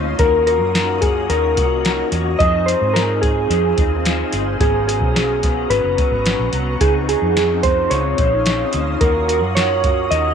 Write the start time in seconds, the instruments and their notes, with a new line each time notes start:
Already playing: fingered electric bass D2, clean electric guitar F3 C4 D#4, tonewheel organ G#3 C#4 D#4 F4, ambient pad C#5 F5 C6 D#6
0.17 fingered electric bass D#2, clean electric guitar D#3 A#3 C#4 F#4, tonewheel organ A#3 C#4 F4, synth keys A#4, ambient pad C#5 D#5 A#5, kick, closed hi-hat
0.22 tonewheel organ F#4
0.46 clean electric guitar A#3 C#4 F#4, synth keys A#4, closed hi-hat
0.61 fingered electric bass F#2
0.74 clean electric guitar D#3 A#3 C#4 F#4, snare, closed hi-hat
1.01 clean electric guitar A#3 C#4 F#4, synth keys G#4, kick, closed hi-hat
1.29 fingered electric bass D#2, clean electric guitar D#3 A#3 C#4 F#4, synth keys A#4, closed hi-hat
1.56 fingered electric bass C2, clean electric guitar A#3 C#4 F#4, kick, closed hi-hat
1.84 clean electric guitar D#3 A#3 C#4 F#4, snare, closed hi-hat
2.11 fingered electric bass E2, clean electric guitar A#3 C#4 F#4, closed hi-hat
2.38 fingered electric bass F2, clean electric guitar F3 C4 D#4 G#4, tonewheel organ C4 D#4 F4, ambient pad C5 F5 G#5, synth keys D#5, kick, closed hi-hat
2.43 tonewheel organ G#4
2.66 clean electric guitar C4 D#4 G#4, synth keys C5, closed hi-hat
2.81 fingered electric bass G#2
2.94 clean electric guitar F3 C4 D#4 G#4, synth keys A#4, snare, closed hi-hat
3.21 clean electric guitar C4 D#4 G#4, synth keys G#4, kick, closed hi-hat
3.49 fingered electric bass F2, clean electric guitar F3 C4 D#4 G#4, closed hi-hat
3.76 fingered electric bass D#2, clean electric guitar C4 D#4 G#4, kick, closed hi-hat
4.04 clean electric guitar F3 C4 D#4 G#4, snare, closed hi-hat
4.31 fingered electric bass G1, clean electric guitar C4 D#4 G#4, closed hi-hat
4.58 fingered electric bass G#1, clean electric guitar G#2 F#3 B3 C#4, tonewheel organ B3 C#4 F#4, synth keys G#4, ambient pad B4 F#5 A#5 C#6, kick, closed hi-hat
4.63 tonewheel organ A#5
4.86 clean electric guitar F#3 B3 C#4, synth keys G#4, closed hi-hat
5.02 fingered electric bass B1, kick
5.14 clean electric guitar G#2 F#3 B3 C#4, snare, closed hi-hat
5.42 clean electric guitar F#3 B3 C#4, kick, snare, closed hi-hat
5.69 fingered electric bass G#1, clean electric guitar G#2 F#3 B3 C#4, synth keys B4, closed hi-hat
5.84 fingered electric bass F#1
5.97 clean electric guitar F#3 B3 C#4, kick, closed hi-hat
6.12 fingered electric bass G#1
6.25 clean electric guitar G#2 F#3 B3 C#4, snare, closed hi-hat
6.39 fingered electric bass A#1
6.52 fingered electric bass C2, clean electric guitar F#3 B3 C#4, closed hi-hat
6.79 fingered electric bass C#2, clean electric guitar C#3 F3 C4 D#4, tonewheel organ C#4 D#4 E4, synth keys G#4, ambient pad C#5 F5 C6 D#6, kick, closed hi-hat
6.84 tonewheel organ G#4
6.89 tonewheel organ F4
7.08 clean electric guitar F3 C4 D#4, synth keys G#4, closed hi-hat
7.22 fingered electric bass F2
7.35 clean electric guitar C#3 F3 C4 D#4, snare, closed hi-hat
7.62 clean electric guitar F3 C4 D#4, synth keys C5, kick, closed hi-hat
7.90 fingered electric bass C#2, clean electric guitar C#3 F3 C4 D#4, synth keys C#5, closed hi-hat
8.18 fingered electric bass A#1, clean electric guitar F3 C4 D#4, kick, closed hi-hat
8.46 clean electric guitar C#3 F3 C4 D#4, snare, closed hi-hat
8.73 fingered electric bass D2, clean electric guitar F3 C4 D#4, closed hi-hat
8.99 fingered electric bass D#2, clean electric guitar D#3 A#3 C#4 F#4, tonewheel organ C#4 F4 F#4, synth keys A#4, ambient pad C#5 D#5 A#5, kick, closed hi-hat
9.04 tonewheel organ A#4
9.28 clean electric guitar A#3 C#4 F#4, synth keys A#4, closed hi-hat
9.42 fingered electric bass F#2
9.55 clean electric guitar D#3 A#3 C#4 F#4, synth keys C#5, snare, closed hi-hat
9.83 clean electric guitar A#3 C#4 F#4, kick, closed hi-hat
10.10 fingered electric bass D#2, clean electric guitar D#3 A#3 C#4 F#4, synth keys D#5, closed hi-hat